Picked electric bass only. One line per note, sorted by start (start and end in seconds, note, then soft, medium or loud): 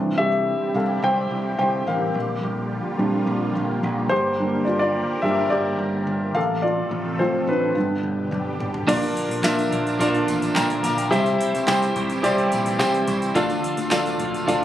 0.00 0.14 C2 medium
0.19 0.53 C2 medium
0.74 0.98 C2 medium
1.02 1.26 C2 medium
1.31 1.54 C2 medium
1.59 1.82 C2 medium
1.87 2.10 A1 medium
2.14 2.38 A#1 medium
2.43 2.78 A#1 medium
2.99 3.22 A#1 medium
3.27 3.50 A#1 medium
3.55 3.78 A#1 medium
3.83 4.06 A#1 medium
4.11 4.57 G1 medium
4.68 5.02 G1 medium
5.23 5.46 G1 medium
5.50 5.74 G1 medium
5.79 6.02 G1 medium
6.07 6.30 G1 medium
6.35 6.81 A1 medium
6.91 7.26 A1 medium
7.47 7.70 A1 medium
7.75 7.98 G1 medium
8.03 8.26 G1 medium
8.31 8.54 G1 medium
8.60 8.83 G1 medium
8.89 9.11 A#1 loud
9.29 9.41 A#1 medium
9.43 9.66 A#1 medium
9.72 9.95 A#1 medium
10.00 10.23 A#1 medium
10.28 10.51 A1 medium
10.56 10.79 A#1 loud
10.84 11.07 A#1 loud
11.12 11.35 C2 medium
11.54 11.66 C2 medium
11.69 11.91 C2 loud
11.96 12.19 C2 loud
12.24 12.47 C2 medium
12.52 12.80 A#1 medium
12.80 13.03 C2 loud
13.08 13.31 C2 loud
13.36 13.59 D2 loud
13.78 13.90 D2 medium
13.91 14.15 D2 loud
14.20 14.43 D2 medium
14.48 14.65 D2 loud